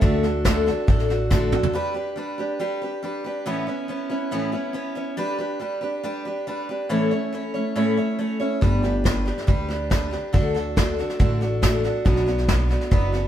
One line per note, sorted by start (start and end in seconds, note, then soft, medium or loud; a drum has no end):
0.01 0.69 D2 loud
0.01 0.23 D3 loud
0.01 0.24 A3 loud
0.01 0.24 D4 medium
0.01 0.23 F#4 loud
0.01 0.22 A4 loud
0.01 kick loud
0.01 snare soft
0.23 0.44 D4 soft
0.23 0.45 F#4 medium
0.23 0.45 A4 medium
0.23 snare soft
0.45 0.66 D3 medium
0.45 0.67 A3 medium
0.45 0.67 D4 medium
0.45 0.66 F#4 medium
0.45 0.65 A4 medium
0.45 kick medium
0.45 snare loud
0.45 hi-hat pedal medium
0.66 0.87 D4 medium
0.66 0.88 F#4 medium
0.66 0.88 A4 medium
0.66 snare soft
0.87 1.55 A1 medium
0.87 1.09 A3 medium
0.87 1.10 D4 medium
0.87 1.09 F#4 medium
0.87 1.07 A4 medium
0.87 kick loud
0.87 snare soft
0.99 snare soft
1.09 1.30 D4 soft
1.09 1.31 F#4 medium
1.09 1.30 A4 medium
1.09 snare soft
1.30 1.52 D3 loud
1.30 1.52 A3 medium
1.30 1.53 D4 medium
1.30 1.53 F#4 medium
1.30 1.51 A4 loud
1.30 kick loud
1.30 snare medium
1.30 hi-hat pedal loud
1.52 1.73 D4 medium
1.52 1.74 F#4 medium
1.52 1.74 A4 medium
1.52 mid tom medium
1.63 floor tom medium
1.73 1.95 G3 medium
1.73 1.96 D4 medium
1.73 1.94 G4 medium
1.73 1.93 B4 loud
1.94 2.16 D4 soft
1.94 2.17 G4 soft
1.94 2.17 B4 medium
2.16 2.38 G3 medium
2.16 2.39 D4 medium
2.16 2.38 G4 medium
2.16 2.37 B4 medium
2.38 2.59 D4 soft
2.38 2.59 G4 medium
2.38 2.60 B4 medium
2.59 2.81 G3 medium
2.59 2.82 D4 medium
2.59 2.82 G4 medium
2.59 2.80 B4 loud
2.82 3.02 D4 soft
2.82 3.03 G4 soft
2.82 3.03 B4 medium
3.03 3.24 G3 medium
3.03 3.25 D4 medium
3.03 3.25 G4 medium
3.03 3.23 B4 medium
3.24 3.47 D4 soft
3.24 3.47 G4 medium
3.24 3.46 B4 medium
3.46 3.67 A2 medium
3.46 3.68 E3 medium
3.46 3.68 B3 loud
3.46 3.67 C#4 loud
3.46 3.67 E4 loud
3.46 3.66 B4 medium
3.67 3.87 B3 soft
3.67 3.88 C#4 soft
3.67 3.89 E4 medium
3.67 3.89 B4 medium
3.88 4.10 B3 medium
3.88 4.10 C#4 medium
3.88 4.09 E4 medium
3.88 4.08 B4 medium
4.10 4.31 B3 medium
4.10 4.31 C#4 medium
4.10 4.31 E4 medium
4.10 4.32 B4 medium
4.31 4.53 A2 medium
4.31 4.53 E3 medium
4.31 4.53 B3 medium
4.31 4.53 C#4 loud
4.31 4.52 E4 medium
4.31 4.51 B4 medium
4.52 4.72 B3 soft
4.52 4.73 C#4 medium
4.52 4.74 E4 medium
4.52 4.74 B4 medium
4.73 4.96 B3 medium
4.73 4.96 C#4 medium
4.73 4.95 E4 medium
4.73 4.94 B4 medium
4.95 5.17 B3 soft
4.95 5.17 C#4 medium
4.95 5.18 E4 medium
4.95 5.17 B4 medium
5.17 5.39 G3 loud
5.17 5.39 D4 loud
5.17 5.39 G4 loud
5.17 5.37 B4 loud
5.38 5.59 D4 soft
5.38 5.60 G4 medium
5.38 5.61 B4 medium
5.59 5.82 G3 medium
5.59 5.82 D4 medium
5.59 5.81 G4 medium
5.59 5.80 B4 medium
5.81 6.03 D4 soft
5.81 6.03 G4 medium
5.81 6.03 B4 medium
6.03 6.25 G3 medium
6.03 6.26 D4 medium
6.03 6.25 G4 medium
6.03 6.24 B4 medium
6.25 6.46 D4 medium
6.25 6.47 G4 soft
6.25 6.47 B4 medium
6.47 6.69 G3 medium
6.47 6.69 D4 medium
6.47 6.69 G4 medium
6.47 6.68 B4 medium
6.69 6.90 D4 soft
6.69 6.90 G4 medium
6.69 6.90 B4 medium
6.89 7.11 A2 medium
6.89 7.11 E3 medium
6.89 7.12 A3 medium
6.89 7.11 C#4 medium
6.89 7.10 E4 loud
6.89 7.10 C#5 medium
7.11 7.31 A3 soft
7.11 7.33 C#4 medium
7.11 7.33 E4 medium
7.11 7.33 C#5 medium
7.33 7.54 A3 medium
7.33 7.54 C#4 medium
7.33 7.53 E4 medium
7.33 7.53 C#5 medium
7.54 7.75 A3 soft
7.54 7.75 C#4 medium
7.54 7.76 E4 soft
7.54 7.76 C#5 medium
7.75 7.97 A2 medium
7.75 7.97 E3 medium
7.75 7.97 A3 medium
7.75 7.98 C#4 medium
7.75 7.97 E4 medium
7.75 7.96 C#5 medium
7.97 8.17 A3 soft
7.97 8.18 C#4 soft
7.97 8.19 E4 soft
7.97 8.19 C#5 medium
8.19 8.40 A3 medium
8.19 8.40 C#4 medium
8.19 8.39 E4 medium
8.19 8.38 C#5 medium
8.40 8.61 A3 soft
8.40 8.62 C#4 medium
8.40 8.62 E4 medium
8.40 8.62 C#5 medium
8.61 9.29 G1 medium
8.61 8.83 G3 medium
8.61 8.84 D4 medium
8.61 8.82 G4 medium
8.61 8.82 B4 loud
8.61 kick loud
8.61 snare soft
8.83 9.04 D4 soft
8.83 9.05 G4 soft
8.83 9.05 B4 medium
8.83 snare soft
9.04 9.26 G3 medium
9.04 9.26 D4 medium
9.04 9.26 G4 medium
9.04 9.24 B4 medium
9.04 kick medium
9.04 snare loud
9.04 hi-hat pedal medium
9.26 9.46 D4 soft
9.26 9.47 G4 soft
9.26 9.48 B4 medium
9.26 snare soft
9.38 snare soft
9.47 10.15 D2 medium
9.47 9.69 G3 medium
9.47 9.69 D4 medium
9.47 9.69 G4 medium
9.47 9.67 B4 medium
9.47 kick loud
9.47 snare soft
9.69 9.90 D4 medium
9.69 9.91 G4 medium
9.69 9.91 B4 medium
9.69 snare soft
9.90 10.12 G3 medium
9.90 10.12 D4 medium
9.90 10.11 G4 medium
9.90 10.10 B4 medium
9.90 kick medium
9.90 snare loud
9.90 hi-hat pedal medium
10.11 10.32 D4 soft
10.11 10.34 G4 medium
10.11 10.33 B4 medium
10.11 snare soft
10.33 11.01 D2 loud
10.33 10.55 D3 medium
10.33 10.55 A3 medium
10.33 10.55 D4 loud
10.33 10.55 F#4 loud
10.33 10.53 A4 loud
10.33 kick loud
10.33 snare soft
10.54 10.76 D4 soft
10.54 10.77 F#4 medium
10.54 10.77 A4 medium
10.54 snare soft
10.76 10.98 A3 medium
10.76 10.99 D4 medium
10.76 10.99 F#4 medium
10.76 10.97 A4 medium
10.76 kick medium
10.76 snare loud
10.76 hi-hat pedal medium
10.98 11.19 D4 soft
10.98 11.20 F#4 medium
10.98 11.20 A4 medium
10.98 snare soft
11.10 snare soft
11.19 11.87 A1 medium
11.19 11.41 D3 medium
11.19 11.42 A3 medium
11.19 11.42 D4 medium
11.19 11.41 F#4 medium
11.19 11.40 A4 medium
11.19 kick loud
11.19 snare soft
11.41 11.62 D4 soft
11.41 11.63 F#4 soft
11.41 11.63 A4 medium
11.41 snare soft
11.62 11.84 A3 medium
11.62 11.84 D4 medium
11.62 11.83 F#4 medium
11.62 11.82 A4 medium
11.62 kick medium
11.62 snare loud
11.62 hi-hat pedal loud
11.83 12.05 D4 medium
11.83 12.05 F#4 medium
11.83 12.05 A4 medium
11.83 snare soft
12.05 12.72 B1 medium
12.05 12.27 B2 medium
12.05 12.27 F#3 medium
12.05 12.27 B3 medium
12.05 12.27 D4 medium
12.05 12.26 F#4 medium
12.05 12.25 B4 medium
12.05 kick loud
12.05 snare soft
12.16 snare soft
12.26 12.47 B3 soft
12.26 12.48 D4 medium
12.26 12.49 F#4 medium
12.26 12.49 B4 medium
12.26 snare soft
12.38 snare soft
12.48 12.70 B3 medium
12.48 12.70 D4 medium
12.48 12.69 F#4 medium
12.48 12.68 B4 medium
12.48 kick medium
12.48 snare loud
12.48 hi-hat pedal medium
12.70 12.91 B3 soft
12.70 12.91 D4 medium
12.70 12.91 F#4 medium
12.70 12.92 B4 medium
12.70 snare soft
12.81 snare soft
12.91 13.28 F#1 medium
12.91 13.13 B2 medium
12.91 13.13 F#3 medium
12.91 13.14 B3 medium
12.91 13.13 D4 medium
12.91 13.12 F#4 medium
12.91 13.11 B4 medium
12.91 kick loud
12.91 snare soft
13.12 13.28 B3 soft
13.12 13.28 D4 soft
13.12 13.28 F#4 medium
13.12 13.28 B4 medium
13.12 snare soft